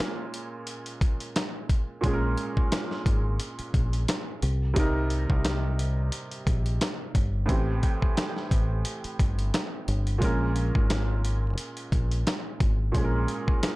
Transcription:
0.00 1.98 A#2 medium
0.00 1.99 G#3 medium
0.00 2.00 C#4 medium
0.00 2.01 A#4 medium
0.00 snare medium
0.34 closed hi-hat medium
0.67 closed hi-hat medium
0.86 closed hi-hat soft
1.01 kick loud
1.01 closed hi-hat medium
1.20 closed hi-hat medium
1.36 snare loud
1.36 snare medium
1.36 closed hi-hat loud
1.69 kick loud
1.69 closed hi-hat medium
2.01 2.35 A#1 loud
2.01 4.37 A#2 medium
2.01 4.38 G#3 medium
2.01 kick loud
2.01 closed hi-hat loud
2.05 4.39 C#4 medium
2.05 2.12 G#4 medium
2.14 4.43 A#4 medium
2.38 closed hi-hat medium
2.57 kick medium
2.72 snare loud
2.72 snare medium
2.72 closed hi-hat loud
2.91 snare soft
3.06 3.37 G#1 medium
3.06 kick loud
3.06 closed hi-hat medium
3.40 closed hi-hat medium
3.59 muted fingered electric bass stroke soft
3.59 closed hi-hat soft
3.74 4.05 A#1 medium
3.74 kick loud
3.74 closed hi-hat medium
3.93 closed hi-hat medium
4.08 snare loud
4.08 snare medium
4.08 closed hi-hat loud
4.42 5.25 C2 loud
4.42 closed hi-hat medium
4.74 7.44 C3 medium
4.74 7.45 G3 medium
4.74 7.46 D#4 medium
4.74 kick loud
4.74 closed hi-hat medium
4.80 7.47 A#4 medium
5.10 closed hi-hat medium
5.30 6.09 C2 loud
5.30 kick medium
5.45 snare loud
5.45 closed hi-hat loud
5.79 closed hi-hat medium
6.12 closed hi-hat medium
6.31 closed hi-hat soft
6.47 6.78 A#1 medium
6.47 kick medium
6.47 closed hi-hat medium
6.66 closed hi-hat medium
6.81 snare loud
6.81 snare medium
6.81 closed hi-hat loud
7.15 7.46 G1 loud
7.15 kick loud
7.15 closed hi-hat medium
7.46 7.80 A1 loud
7.46 10.16 A2 medium
7.46 10.17 E3 medium
7.46 10.18 C4 medium
7.46 kick loud
7.46 closed hi-hat loud
7.52 10.19 G4 medium
7.83 kick medium
7.83 closed hi-hat medium
8.02 kick medium
8.17 snare loud
8.17 snare medium
8.17 closed hi-hat loud
8.37 snare soft
8.51 8.82 A1 medium
8.51 kick loud
8.51 closed hi-hat medium
8.85 closed hi-hat medium
9.04 muted fingered electric bass stroke soft
9.04 closed hi-hat soft
9.19 9.51 G1 medium
9.19 kick medium
9.19 closed hi-hat medium
9.39 closed hi-hat medium
9.54 snare loud
9.54 snare medium
9.54 closed hi-hat loud
9.88 10.19 G1 medium
9.88 closed hi-hat medium
10.07 closed hi-hat soft
10.18 10.71 A#1 loud
10.18 12.89 A#2 medium
10.18 12.90 G#3 medium
10.18 kick loud
10.18 closed hi-hat loud
10.22 12.91 C#4 medium
10.22 12.92 A#4 medium
10.56 closed hi-hat medium
10.75 11.55 G#1 medium
10.75 kick medium
10.90 snare loud
10.90 closed hi-hat loud
11.25 closed hi-hat medium
11.58 closed hi-hat loud
11.77 closed hi-hat soft
11.92 12.23 A#1 medium
11.92 kick medium
11.92 closed hi-hat medium
12.11 closed hi-hat medium
12.27 snare loud
12.27 snare medium
12.27 closed hi-hat loud
12.60 12.91 G#1 medium
12.60 kick loud
12.60 closed hi-hat medium
12.92 13.26 A#1 loud
12.92 13.76 A#2 medium
12.92 13.76 G#3 medium
12.92 13.76 C#4 medium
12.92 kick loud
12.92 closed hi-hat loud
12.98 13.03 G#4 medium
13.04 13.76 A#4 medium
13.28 closed hi-hat medium
13.48 kick medium
13.63 snare loud
13.63 snare medium
13.63 closed hi-hat loud

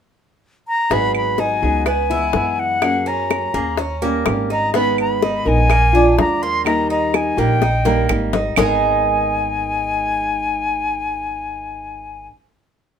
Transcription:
0.68 0.95 A#5 loud
0.90 1.59 G#1 medium
0.90 1.61 D#3 medium
0.90 1.61 F#3 medium
0.90 1.62 B3 medium
0.90 1.38 B3 medium
0.90 1.62 D#4 medium
0.90 1.61 G#4 medium
0.90 1.16 B5 loud
0.90 high bongo medium
1.15 1.42 B5 medium
1.15 claves medium
1.38 1.85 D#4 medium
1.38 1.87 G#5 medium
1.38 high bongo medium
1.62 2.31 C#2 medium
1.62 1.86 F#3 medium
1.62 1.86 B3 medium
1.62 1.86 D#4 medium
1.62 1.86 G#4 medium
1.86 2.10 B3 medium
1.86 2.61 G#5 medium
1.86 muted nylon-string guitar stroke soft
1.86 high bongo medium
1.86 claves medium
2.10 2.33 E3 medium
2.10 2.34 G#3 medium
2.10 2.34 B3 medium
2.10 2.33 E4 medium
2.10 2.57 E4 medium
2.33 3.48 F#2 medium
2.33 2.81 E3 medium
2.33 2.82 G#3 soft
2.33 2.82 B3 medium
2.33 2.82 E4 soft
2.33 high bongo medium
2.33 low bongo medium
2.59 3.09 F#5 loud
2.82 3.53 F#3 medium
2.82 3.55 A#3 medium
2.82 3.53 C#4 medium
2.82 3.53 G#4 medium
2.82 high bongo medium
2.82 claves medium
3.06 3.53 C#4 medium
3.06 4.03 A#5 medium
3.30 high bongo medium
3.30 claves medium
3.54 4.22 D#2 medium
3.54 3.78 A#3 medium
3.54 3.78 A#3 soft
3.54 3.78 C#4 medium
3.54 3.77 G#4 medium
3.54 high bongo soft
3.78 4.02 C#4 medium
3.78 muted nylon-string guitar stroke medium
3.78 high bongo medium
4.02 4.26 G3 medium
4.02 4.49 A#3 medium
4.02 4.26 C#4 medium
4.02 4.25 G4 medium
4.02 high bongo soft
4.26 5.39 G#1 medium
4.26 4.73 D#3 medium
4.26 4.74 G3 soft
4.26 4.74 C#4 medium
4.26 4.74 G4 medium
4.26 high bongo medium
4.26 low bongo medium
4.26 claves medium
4.50 4.74 D#4 medium
4.50 4.73 A#5 medium
4.50 high bongo soft
4.74 5.45 D#3 medium
4.74 5.45 G#3 medium
4.74 5.21 B3 medium
4.74 5.46 B3 medium
4.74 5.45 D#4 medium
4.74 4.97 B5 loud
4.74 high bongo medium
4.98 5.49 B5 medium
4.98 claves medium
5.22 5.69 D#4 medium
5.22 high bongo medium
5.45 6.14 A#1 medium
5.45 5.69 G#3 soft
5.45 5.69 B3 medium
5.45 5.69 D#4 medium
5.45 5.69 A#4 medium
5.45 6.19 G#5 loud
5.70 5.93 A#3 medium
5.70 muted nylon-string guitar stroke medium
5.70 high bongo medium
5.70 claves medium
5.93 6.17 G#3 medium
5.93 6.17 D4 medium
5.93 6.41 D4 medium
5.93 6.16 F4 medium
6.17 7.31 D#2 medium
6.17 6.64 F3 soft
6.17 6.65 G#3 medium
6.17 6.65 D4 medium
6.17 6.65 F4 medium
6.17 6.44 A#5 medium
6.17 high bongo medium
6.17 low bongo medium
6.42 6.89 A#3 medium
6.42 6.65 C6 loud
6.64 7.36 D#3 medium
6.64 7.36 G3 medium
6.64 7.37 A#3 medium
6.64 7.37 D#4 medium
6.64 7.36 G4 medium
6.64 6.88 A#5 medium
6.64 high bongo medium
6.64 claves medium
6.90 7.36 D#4 medium
6.90 7.17 A#5 medium
7.14 7.41 G#5 medium
7.14 high bongo medium
7.14 claves medium
7.37 8.05 A#1 medium
7.37 7.61 G3 soft
7.37 7.61 A#3 medium
7.37 7.61 D#4 medium
7.37 7.60 G4 medium
7.37 8.10 G5 medium
7.37 high bongo soft
7.62 7.85 D#4 medium
7.62 muted nylon-string guitar stroke medium
7.62 high bongo medium
7.85 8.07 G3 medium
7.85 8.31 A#3 medium
7.85 8.08 A#3 medium
7.85 8.08 D#4 medium
7.85 8.08 G4 medium
7.85 low bongo medium
8.09 8.51 G#1 medium
8.09 8.56 G3 soft
8.09 8.56 A#3 soft
8.09 8.56 D#4 medium
8.09 8.57 G4 soft
8.09 low bongo medium
8.09 claves medium
8.33 8.56 D#4 medium
8.33 low bongo medium
8.56 12.26 G#1 medium
8.56 12.29 G#2 medium
8.56 12.30 D#3 medium
8.56 12.27 G#3 medium
8.56 12.31 G#3 medium
8.56 12.32 B3 medium
8.56 12.27 D#4 medium
8.56 12.32 D#4 medium
8.56 12.28 G#4 medium
8.56 12.32 A#4 medium
8.56 12.27 G#5 medium
8.56 low bongo loud
8.56 claves medium

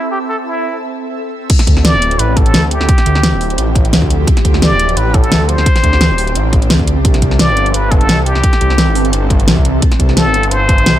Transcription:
0.00 1.46 C4 medium
0.00 0.11 E4 medium
0.00 1.46 A4 medium
0.00 1.46 E5 medium
0.11 0.19 G4 medium
0.29 0.36 A4 medium
0.46 0.78 E4 medium
1.50 7.01 F3 medium
1.50 10.99 C4 medium
1.50 4.25 E4 medium
1.50 7.01 G4 medium
1.50 kick loud
1.50 closed hi-hat loud
1.50 crash loud
1.59 snare soft
1.59 closed hi-hat soft
1.67 1.95 D2 loud
1.67 kick medium
1.67 closed hi-hat medium
1.77 snare soft
1.84 2.21 D5 loud
1.84 snare loud
1.84 closed hi-hat loud
1.94 2.18 D1 loud
2.02 closed hi-hat medium
2.11 closed hi-hat soft
2.19 2.55 A1 loud
2.19 2.38 B4 loud
2.19 closed hi-hat loud
2.37 2.73 A4 loud
2.37 kick loud
2.37 closed hi-hat medium
2.46 closed hi-hat soft
2.54 2.79 D2 medium
2.54 snare loud
2.54 closed hi-hat medium
2.71 3.75 G4 loud
2.71 closed hi-hat medium
2.80 2.88 D2 medium
2.80 snare soft
2.89 kick loud
2.89 closed hi-hat loud
2.98 snare soft
2.98 closed hi-hat soft
3.06 3.34 D2 loud
3.06 closed hi-hat medium
3.15 snare soft
3.23 snare loud
3.23 closed hi-hat loud
3.33 3.57 D1 loud
3.41 open hi-hat medium
3.50 closed hi-hat soft
3.58 3.94 A1 loud
3.58 closed hi-hat medium
3.75 kick loud
3.75 closed hi-hat medium
3.85 closed hi-hat soft
3.93 4.18 D2 medium
3.93 snare loud
3.93 closed hi-hat medium
4.02 kick medium
4.10 closed hi-hat medium
4.19 4.26 D2 medium
4.27 7.02 D4 medium
4.27 kick loud
4.27 closed hi-hat medium
4.37 snare soft
4.37 closed hi-hat soft
4.45 4.73 D2 loud
4.45 kick medium
4.45 closed hi-hat medium
4.54 snare soft
4.62 4.99 D5 loud
4.62 snare loud
4.62 closed hi-hat medium
4.71 4.95 D1 loud
4.80 closed hi-hat medium
4.89 closed hi-hat soft
4.97 5.33 A1 loud
4.97 5.16 B4 loud
4.97 closed hi-hat medium
5.14 5.50 A4 loud
5.14 kick loud
5.14 closed hi-hat medium
5.24 closed hi-hat soft
5.31 5.56 D2 medium
5.31 snare loud
5.31 closed hi-hat medium
5.49 6.53 C5 loud
5.49 closed hi-hat medium
5.58 5.65 D2 medium
5.58 snare soft
5.66 kick loud
5.66 closed hi-hat medium
5.76 snare soft
5.76 closed hi-hat soft
5.83 6.12 D2 loud
5.83 kick medium
5.83 closed hi-hat medium
5.93 snare soft
6.01 snare loud
6.01 closed hi-hat medium
6.10 6.37 D1 loud
6.18 open hi-hat medium
6.27 closed hi-hat soft
6.35 6.72 A1 medium
6.35 closed hi-hat medium
6.53 kick loud
6.53 closed hi-hat medium
6.62 closed hi-hat soft
6.70 6.98 D2 medium
6.70 snare loud
6.70 closed hi-hat medium
6.79 kick medium
6.88 closed hi-hat medium
6.97 7.21 C2 medium
7.05 10.99 E3 medium
7.05 9.80 A4 medium
7.05 kick loud
7.05 closed hi-hat medium
7.14 snare soft
7.14 closed hi-hat soft
7.22 7.50 C2 loud
7.22 kick medium
7.22 closed hi-hat medium
7.31 snare soft
7.39 7.76 D5 loud
7.39 snare loud
7.39 closed hi-hat medium
7.49 7.73 G1 loud
7.57 closed hi-hat medium
7.66 closed hi-hat soft
7.74 8.11 G1 loud
7.74 7.92 B4 loud
7.74 closed hi-hat medium
7.91 8.27 A4 loud
7.91 kick loud
7.91 closed hi-hat medium
8.01 closed hi-hat soft
8.09 8.34 C2 medium
8.09 snare loud
8.09 closed hi-hat medium
8.25 9.30 G4 loud
8.25 closed hi-hat medium
8.35 8.43 C2 medium
8.35 snare soft
8.44 kick loud
8.44 closed hi-hat medium
8.53 snare soft
8.53 closed hi-hat soft
8.61 8.89 C2 loud
8.61 closed hi-hat medium
8.70 snare soft
8.78 snare loud
8.78 closed hi-hat medium
8.88 9.12 G1 loud
8.95 open hi-hat medium
9.05 closed hi-hat soft
9.13 9.49 G1 loud
9.13 closed hi-hat medium
9.30 kick loud
9.30 closed hi-hat medium
9.40 closed hi-hat soft
9.48 9.73 C2 medium
9.48 snare loud
9.48 closed hi-hat medium
9.57 kick medium
9.65 closed hi-hat medium
9.74 9.81 C2 medium
9.82 10.99 G4 medium
9.82 kick loud
9.82 closed hi-hat medium
9.92 snare soft
9.92 closed hi-hat soft
10.00 10.28 C2 loud
10.00 kick medium
10.00 closed hi-hat medium
10.09 snare soft
10.17 10.53 A4 loud
10.17 snare loud
10.17 closed hi-hat loud
10.26 10.50 G1 loud
10.34 closed hi-hat medium
10.43 closed hi-hat soft
10.51 10.88 G1 loud
10.51 10.99 C5 loud
10.51 closed hi-hat loud
10.69 kick loud
10.69 closed hi-hat medium
10.78 closed hi-hat soft
10.86 10.99 C2 medium
10.86 snare loud
10.86 closed hi-hat medium

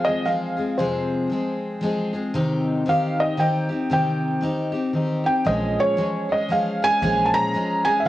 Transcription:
0.05 0.24 F3 soft
0.05 0.25 G#3 soft
0.05 0.26 C4 soft
0.05 0.27 G#4 soft
0.05 0.27 D#5 medium
0.25 0.57 F3 soft
0.25 0.58 G#3 soft
0.25 0.57 C4 soft
0.25 0.55 G#4 medium
0.25 0.75 F5 medium
0.57 0.78 F3 soft
0.57 0.78 G#3 soft
0.57 0.79 C4 soft
0.57 0.78 G#4 soft
0.78 1.30 F2 soft
0.78 1.31 C3 medium
0.78 1.28 F3 medium
0.78 1.30 G#3 medium
0.78 1.32 C4 medium
0.78 1.32 G#4 medium
0.78 1.27 C5 medium
1.30 1.80 F3 soft
1.30 1.81 G#3 soft
1.30 1.83 C4 medium
1.30 1.83 G#4 medium
1.81 2.13 F3 medium
1.81 2.14 G#3 medium
1.81 2.13 C4 medium
1.81 2.12 G#4 medium
2.13 2.34 F3 soft
2.13 2.35 G#3 soft
2.13 2.34 C4 soft
2.13 2.34 G#4 soft
2.34 2.86 C3 medium
2.34 2.85 D#3 medium
2.34 2.86 C4 medium
2.34 2.87 D#4 medium
2.34 2.87 G4 medium
2.86 3.36 D#3 medium
2.86 3.37 C4 medium
2.86 3.38 D#4 medium
2.86 3.39 G4 medium
2.86 3.20 F5 medium
3.20 3.41 D#5 medium
3.37 3.69 D#3 medium
3.37 3.69 C4 medium
3.37 3.70 D#4 medium
3.37 3.68 G4 medium
3.37 3.92 G5 medium
3.69 3.90 C4 soft
3.69 3.90 D#4 soft
3.69 3.90 G4 soft
3.90 4.42 C3 medium
3.90 4.40 D#3 medium
3.90 4.41 C4 medium
3.90 4.42 D#4 medium
3.90 4.43 G4 medium
3.90 4.40 G5 medium
4.41 4.73 D#3 soft
4.41 4.74 C4 medium
4.41 4.73 D#4 medium
4.41 4.71 G4 medium
4.72 4.94 C4 soft
4.72 4.95 D#4 soft
4.72 4.94 G4 soft
4.93 5.25 D#3 medium
4.93 5.25 C4 medium
4.93 5.24 D#4 medium
4.93 5.23 G4 medium
5.24 5.46 C4 soft
5.24 5.46 D#4 soft
5.24 5.46 G4 soft
5.24 5.48 G5 medium
5.45 5.76 A#1 medium
5.45 5.98 A#2 medium
5.45 5.96 F3 medium
5.45 5.98 G#3 medium
5.45 5.98 C#4 medium
5.45 6.00 G#4 medium
5.45 5.79 D#5 medium
5.80 6.32 C#5 medium
5.97 6.29 F3 medium
5.97 6.29 G#3 medium
5.97 6.30 C#4 medium
5.97 6.28 G#4 medium
6.29 6.49 G#3 soft
6.29 6.50 C#4 soft
6.29 6.50 G#4 soft
6.29 6.50 D#5 medium
6.49 6.81 F3 medium
6.49 6.81 G#3 medium
6.49 6.82 C#4 medium
6.49 6.81 G#4 medium
6.49 6.83 F5 medium
6.82 7.02 G#3 soft
6.82 7.03 C#4 soft
6.82 7.03 G#4 soft
6.82 7.28 G#5 loud
7.02 7.32 A#1 medium
7.02 7.54 A#2 medium
7.02 7.52 F3 medium
7.02 7.54 G#3 medium
7.02 7.55 C#4 medium
7.02 7.56 G#4 medium
7.25 7.34 A5 medium
7.34 7.87 A#5 loud
7.54 7.85 F3 soft
7.54 7.86 G#3 medium
7.54 7.85 C#4 medium
7.54 7.84 G#4 medium
7.85 8.06 G#3 soft
7.85 8.06 C#4 soft
7.85 8.06 G#4 soft
7.85 8.01 G#5 loud
8.00 8.06 E5 medium
8.05 8.08 F3 medium

